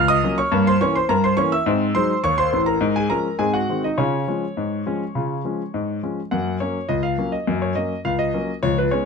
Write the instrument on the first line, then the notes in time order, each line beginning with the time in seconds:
grand piano
Already playing: C#2
0.08 D#5 D#6
0.23 F#3 A#3 C#4
0.38 C#5 C#6
0.52 G2 A#3
0.67 C5 C6
0.81 E3 A#3 C#4 C#5 C#6
0.96 C5 C6
1.09 G2 A#4 A#5
1.24 C5 C6
1.37 E3 A#3 C#4 C#5 C#6
1.52 E5 E6
1.66 G#2 C4
1.95 F#3 G#3 D#4 C5 C6
2.24 D#2 C#5 C#6
2.38 C5 C6
2.53 A1 A2
2.66 A#4 A#5
2.81 G#2
2.96 G#4 G#5
3.10 F3 G#3 C#4 A#4 A#5
3.39 G#2 C4 G#4 G#5
3.54 F#4 F#5
3.69 D#3 G#3 C4
3.84 D#4 D#5
3.98 C#3 C#4 F4 C#5
4.28 F3 G#3 C#4
4.57 G#2
4.86 F3 G#3 C#4
5.15 C#3 F4
5.44 F3 G#3 C#4
5.74 G#2
6.03 F3 G#3 C#4
6.31 F#2 A#3 F#5
6.60 F#3 A#3 C#4 C#5
6.89 C#2 D#5
7.03 F5
7.18 F#3 A#3 C#4
7.32 D#5
7.47 F#2 A#3
7.62 C#5
7.75 F#3 A#3 C#4 D#5
8.05 C#2 F5
8.19 D#5
8.33 F#3 A#3 C#4
8.63 C#2 F3 C#5
8.78 B4
8.91 G#3 B3 C#4 C#5